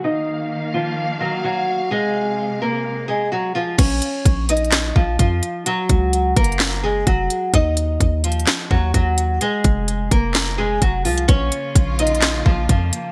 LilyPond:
<<
  \new Staff \with { instrumentName = "Nylon-string guitar" } { \time 4/4 \key bes \minor \tempo 4 = 128 <ees' ees''>4. <f f'>4 <ges ges'>8 <ges ges'>4 | <aes aes'>4. <bes bes'>4 <aes aes'>8 <ges ges'>8 <f f'>8 | <des' des''>4. <ees' ees''>4 <f f'>8 <f f'>4 | <ges ges'>4. <bes bes'>4 <aes aes'>8 <ges ges'>4 |
<ees' ees''>4. <f f'>4 <ges ges'>8 <ges ges'>4 | <aes aes'>4. <bes bes'>4 <aes aes'>8 <ges ges'>8 <f f'>8 | <des' des''>4. <ees' ees''>4 <f f'>8 <f f'>4 | }
  \new Staff \with { instrumentName = "String section" } { \time 4/4 \key bes \minor << { f''1~ | f''1 | r1 | r1 |
r1 | r1 | f'1 | } \\ { <ees bes>1 | <c aes>1 | r1 | r1 |
r1 | r1 | <des bes>1 | } >> }
  \new Staff \with { instrumentName = "808-style bass" } { \clef bass \time 4/4 \key bes \minor r1 | r1 | bes,,8 r8 bes,,4. bes,,8 f,8 r8 | r8 des,4 ges,,4. f,,8 r8 |
ees,4 ees,4 r8 ees,8 ees,4 | r8 f,,4 f,,4. f,,8 c,8 | bes,,8 r8 bes,,4. bes,,8 f,8 r8 | }
  \new DrumStaff \with { instrumentName = "Drums" } \drummode { \time 4/4 r4 r4 r4 r4 | r4 r4 r4 r4 | <cymc hh bd>8 hh8 \tuplet 3/2 { <hh bd>16 r16 r16 hh16 hh16 hh16 } <hc hh sn>8 bd8 <hh bd>8 hh8 | hh8 <hh bd>8 \tuplet 3/2 { hh16 r16 r16 <hh bd>16 hh16 hh16 } <hc hh sn>4 <hh bd>8 hh8 |
<hh bd>8 hh8 \tuplet 3/2 { <hh bd>16 r16 r16 hh16 hh16 hh16 } <hc hh sn>8 bd8 <hh bd>8 hh8 | hh8 <hh bd>8 hh8 <hh bd>8 <hc hh sn>4 <hh bd>8 <hh hho>16 hh16 | <hh bd>8 hh8 \tuplet 3/2 { <hh bd>16 r16 r16 hh16 hh16 hh16 } <hc hh sn>8 bd8 <hh bd>8 hh8 | }
>>